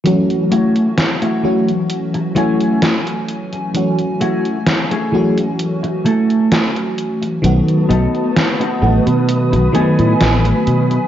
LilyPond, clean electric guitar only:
\new Staff \with { instrumentName = "Clean electric guitar" } { \time 4/4 \key fis \minor \tempo 4 = 65 r8 <a e' fis'>8 r16 <a e' fis'>8 r8. <a e' fis'>8 r4 | r8 <a e' fis'>8 r16 <a e' gis'>8 r8. <a e' a'>8 r4 | r8 <b dis' a'>8 r16 <b dis' fis'>8 r8. <b dis' a'>8 r4 | }